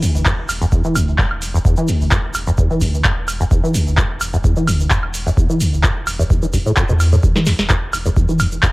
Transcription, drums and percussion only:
0.02 open hi-hat loud
0.02 shaker medium
0.15 shaker soft
0.25 kick loud
0.25 clap loud
0.25 shaker medium
0.49 open hi-hat loud
0.49 high woodblock medium
0.49 shaker medium
0.61 shaker soft
0.72 kick loud
0.72 shaker medium
0.84 shaker soft
0.95 open hi-hat loud
0.95 high woodblock medium
0.95 shaker medium
1.08 shaker soft
1.18 kick loud
1.18 clap loud
1.18 shaker soft
1.31 high woodblock medium
1.42 open hi-hat loud
1.42 shaker medium
1.55 shaker soft
1.65 kick loud
1.65 shaker medium
1.77 shaker soft
1.88 open hi-hat loud
1.88 shaker medium
2.01 shaker soft
2.11 kick loud
2.11 clap loud
2.11 shaker medium
2.34 open hi-hat loud
2.34 high woodblock medium
2.34 shaker loud
2.47 shaker soft
2.58 kick loud
2.58 shaker medium
2.71 shaker soft
2.81 kick medium
2.81 open hi-hat loud
2.81 shaker medium
2.94 shaker soft
3.04 kick loud
3.04 clap loud
3.04 shaker soft
3.28 open hi-hat loud
3.28 high woodblock medium
3.28 shaker medium
3.41 shaker soft
3.51 kick loud
3.51 shaker medium
3.65 shaker soft
3.74 open hi-hat loud
3.74 shaker medium
3.88 shaker soft
3.97 kick loud
3.97 clap loud
3.97 shaker medium
4.21 open hi-hat loud
4.21 high woodblock medium
4.21 shaker medium
4.34 shaker soft
4.44 kick loud
4.44 shaker medium
4.56 shaker soft
4.67 open hi-hat loud
4.67 high woodblock medium
4.67 shaker medium
4.80 shaker soft
4.90 kick loud
4.90 clap loud
4.90 shaker medium
5.03 high woodblock medium
5.14 open hi-hat loud
5.14 shaker loud
5.27 shaker soft
5.37 kick loud
5.37 shaker soft
5.50 shaker soft
5.60 open hi-hat loud
5.60 shaker loud
5.74 shaker soft
5.84 kick loud
5.84 clap loud
5.84 shaker medium
6.07 open hi-hat loud
6.07 high woodblock medium
6.07 shaker loud
6.20 shaker soft
6.30 kick loud
6.30 shaker medium
6.43 shaker soft
6.53 kick medium
6.53 open hi-hat loud
6.53 shaker medium
6.66 shaker soft
6.77 kick loud
6.77 clap loud
6.77 shaker medium
6.89 shaker soft
7.00 open hi-hat loud
7.00 high woodblock medium
7.00 shaker medium
7.12 shaker soft
7.23 kick loud
7.23 shaker soft
7.36 snare medium
7.36 shaker soft
7.46 snare medium
7.46 open hi-hat loud
7.46 shaker medium
7.59 snare medium
7.59 shaker soft
7.70 kick loud
7.70 clap loud
7.70 shaker medium
7.93 open hi-hat loud
7.93 high woodblock medium
7.93 shaker medium
8.05 shaker soft
8.16 kick loud
8.16 shaker soft
8.29 shaker soft
8.39 open hi-hat loud
8.39 high woodblock medium
8.39 shaker medium
8.52 shaker soft
8.63 kick loud
8.63 clap loud
8.63 shaker soft

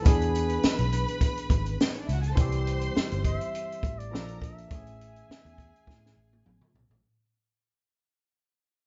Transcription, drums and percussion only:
0.05 kick loud
0.05 closed hi-hat loud
0.05 tambourine medium
0.21 closed hi-hat soft
0.35 closed hi-hat medium
0.35 tambourine medium
0.49 closed hi-hat medium
0.63 snare loud
0.63 tambourine medium
0.78 closed hi-hat medium
0.92 closed hi-hat medium
0.92 tambourine soft
1.08 closed hi-hat soft
1.21 kick medium
1.21 closed hi-hat medium
1.21 tambourine soft
1.37 closed hi-hat soft
1.37 tambourine soft
1.50 kick medium
1.50 closed hi-hat medium
1.50 tambourine soft
1.66 closed hi-hat medium
1.66 tambourine soft
1.80 snare loud
1.80 tambourine medium
1.94 closed hi-hat soft
2.09 closed hi-hat medium
2.09 tambourine soft
2.23 closed hi-hat soft
2.23 tambourine soft
2.37 kick loud
2.37 closed hi-hat medium
2.52 closed hi-hat medium
2.67 closed hi-hat medium
2.81 closed hi-hat medium
2.97 snare loud
3.12 closed hi-hat medium
3.25 kick medium
3.25 closed hi-hat medium
3.41 closed hi-hat soft
3.55 closed hi-hat medium
3.72 closed hi-hat medium
3.83 kick medium
3.83 closed hi-hat medium
4.00 closed hi-hat medium
4.15 snare loud
4.29 closed hi-hat medium
4.42 kick medium
4.42 closed hi-hat medium
4.58 closed hi-hat soft
4.71 kick loud
4.71 closed hi-hat medium
4.87 closed hi-hat soft
5.01 closed hi-hat medium
5.16 closed hi-hat medium
5.31 snare loud
5.46 closed hi-hat soft
5.58 kick medium
5.58 closed hi-hat medium
5.76 closed hi-hat soft
5.87 kick medium
5.87 snare medium
6.06 snare medium
6.33 high tom medium
6.46 mid tom medium
6.61 mid tom medium
6.75 floor tom medium
6.91 floor tom medium

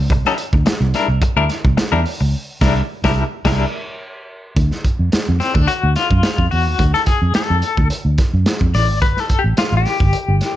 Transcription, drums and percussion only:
0.10 kick loud
0.10 closed hi-hat medium
0.25 snare soft
0.38 closed hi-hat medium
0.53 kick medium
0.66 snare loud
0.66 closed hi-hat medium
0.94 snare soft
0.94 closed hi-hat medium
1.22 kick loud
1.22 closed hi-hat medium
1.50 snare soft
1.50 closed hi-hat medium
1.65 kick loud
1.78 snare loud
1.78 closed hi-hat medium
2.06 open hi-hat medium
2.61 kick loud
2.61 snare medium
2.61 crash medium
3.04 kick loud
3.04 snare loud
3.45 kick loud
3.45 snare loud
3.45 crash medium
4.56 kick loud
4.56 closed hi-hat medium
4.71 snare soft
4.84 kick medium
4.84 closed hi-hat medium
5.12 snare loud
5.12 closed hi-hat medium
5.40 snare soft
5.40 open hi-hat medium
5.55 kick loud
5.68 closed hi-hat loud
5.96 snare soft
5.96 closed hi-hat medium
6.11 kick loud
6.23 snare loud
6.23 closed hi-hat medium
6.38 kick medium
6.51 open hi-hat medium
6.79 kick loud
6.79 closed hi-hat medium
6.94 snare soft
7.06 kick medium
7.06 closed hi-hat medium
7.34 snare loud
7.34 closed hi-hat medium
7.62 closed hi-hat medium
7.77 kick loud
7.90 closed hi-hat medium
8.18 kick loud
8.18 snare soft
8.18 closed hi-hat medium
8.46 snare loud
8.46 closed hi-hat medium
8.61 kick medium
8.74 snare soft
8.74 open hi-hat medium
9.02 kick loud
9.02 closed hi-hat medium
9.17 snare soft
9.29 kick medium
9.29 closed hi-hat medium
9.57 snare loud
9.57 closed hi-hat medium
9.85 snare soft
9.85 open hi-hat medium
10.00 kick loud
10.13 closed hi-hat loud
10.41 snare soft
10.41 closed hi-hat medium

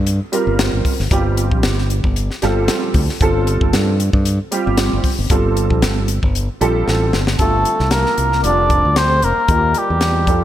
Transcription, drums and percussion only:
0.07 closed hi-hat medium
0.33 closed hi-hat medium
0.59 snare loud
0.59 closed hi-hat medium
0.85 kick medium
0.85 open hi-hat medium
1.00 snare soft
1.11 kick loud
1.11 closed hi-hat medium
1.37 closed hi-hat medium
1.52 kick medium
1.63 snare loud
1.63 closed hi-hat medium
1.78 snare soft
1.90 closed hi-hat medium
2.04 kick medium
2.16 closed hi-hat medium
2.31 snare soft
2.42 snare soft
2.42 closed hi-hat medium
2.68 snare loud
2.68 closed hi-hat medium
2.94 kick medium
2.94 open hi-hat medium
3.09 snare soft
3.21 kick loud
3.21 closed hi-hat medium
3.47 closed hi-hat medium
3.61 kick medium
3.73 snare medium
3.73 closed hi-hat medium
4.00 closed hi-hat medium
4.13 kick medium
4.25 closed hi-hat medium
4.52 closed hi-hat medium
4.77 snare loud
4.77 closed hi-hat medium
5.04 kick medium
5.04 open hi-hat medium
5.30 kick loud
5.30 closed hi-hat medium
5.57 closed hi-hat medium
5.70 kick medium
5.82 snare loud
5.82 closed hi-hat medium
6.08 closed hi-hat medium
6.23 kick medium
6.35 closed hi-hat medium
6.61 closed hi-hat medium
6.88 snare medium
7.13 snare medium
7.27 snare medium
7.39 kick medium
7.39 closed hi-hat medium
7.65 closed hi-hat medium
7.79 snare soft
7.91 snare medium
7.91 closed hi-hat medium
8.06 snare soft
8.18 closed hi-hat medium
8.32 snare soft
8.44 closed hi-hat medium
8.70 kick medium
8.70 closed hi-hat medium
8.96 snare loud
8.96 closed hi-hat medium
9.22 closed hi-hat medium
9.48 kick medium
9.48 closed hi-hat medium
9.74 closed hi-hat medium
10.01 snare medium
10.01 closed hi-hat medium
10.27 kick medium
10.27 closed hi-hat medium

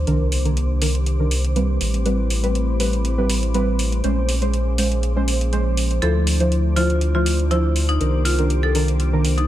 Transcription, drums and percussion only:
0.07 closed hi-hat medium
0.32 open hi-hat medium
0.45 closed hi-hat soft
0.57 closed hi-hat medium
0.82 open hi-hat loud
0.95 closed hi-hat soft
1.06 closed hi-hat medium
1.31 open hi-hat loud
1.44 closed hi-hat soft
1.56 closed hi-hat medium
1.81 open hi-hat loud
1.94 closed hi-hat soft
2.06 closed hi-hat medium
2.30 open hi-hat loud
2.44 closed hi-hat soft
2.55 closed hi-hat medium
2.80 open hi-hat loud
2.93 closed hi-hat soft
3.05 closed hi-hat medium
3.30 open hi-hat loud
3.43 closed hi-hat soft
3.54 closed hi-hat medium
3.79 open hi-hat loud
3.92 closed hi-hat soft
4.04 closed hi-hat medium
4.29 open hi-hat loud
4.42 closed hi-hat soft
4.54 closed hi-hat medium
4.78 open hi-hat loud
4.92 closed hi-hat soft
5.03 closed hi-hat medium
5.28 open hi-hat loud
5.41 closed hi-hat soft
5.53 closed hi-hat medium
5.77 open hi-hat loud
5.91 closed hi-hat soft
6.02 closed hi-hat medium
6.27 open hi-hat medium
6.40 closed hi-hat soft
6.52 closed hi-hat medium
6.77 open hi-hat medium
6.90 closed hi-hat soft
7.01 closed hi-hat medium
7.26 open hi-hat medium
7.39 closed hi-hat soft
7.51 closed hi-hat medium
7.76 open hi-hat loud
7.89 closed hi-hat soft
8.01 closed hi-hat medium
8.25 open hi-hat medium
8.39 closed hi-hat soft
8.50 closed hi-hat medium
8.75 open hi-hat medium
8.88 closed hi-hat soft
9.00 closed hi-hat medium
9.25 open hi-hat medium
9.38 closed hi-hat soft

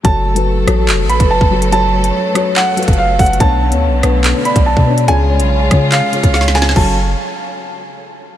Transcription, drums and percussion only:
0.05 kick loud
0.05 closed hi-hat medium
0.36 closed hi-hat medium
0.67 cross-stick loud
0.67 closed hi-hat medium
0.89 clap loud
0.89 closed hi-hat medium
1.10 closed hi-hat medium
1.20 kick loud
1.20 closed hi-hat medium
1.41 kick loud
1.62 closed hi-hat medium
1.72 closed hi-hat medium
2.04 closed hi-hat medium
2.35 cross-stick loud
2.35 closed hi-hat medium
2.56 clap loud
2.56 closed hi-hat medium
2.77 closed hi-hat medium
2.83 closed hi-hat medium
2.88 kick loud
2.88 closed hi-hat medium
2.93 closed hi-hat soft
3.19 kick medium
3.19 closed hi-hat medium
3.19 open hi-hat medium
3.26 closed hi-hat medium
3.33 closed hi-hat medium
3.40 kick loud
3.40 closed hi-hat medium
3.72 closed hi-hat medium
4.03 cross-stick loud
4.03 closed hi-hat medium
4.24 clap loud
4.24 closed hi-hat medium
4.45 closed hi-hat medium
4.56 kick loud
4.56 closed hi-hat medium
4.77 kick loud
4.98 closed hi-hat medium
5.08 closed hi-hat medium
5.40 closed hi-hat medium
5.71 kick loud
5.71 cross-stick loud
5.71 closed hi-hat medium
5.92 clap loud
5.92 closed hi-hat medium
6.13 closed hi-hat medium
6.23 kick loud
6.23 closed hi-hat medium
6.34 snare medium
6.41 snare medium
6.48 snare medium
6.55 snare medium
6.55 closed hi-hat medium
6.62 snare loud
6.69 snare loud
6.76 kick loud
6.76 crash medium

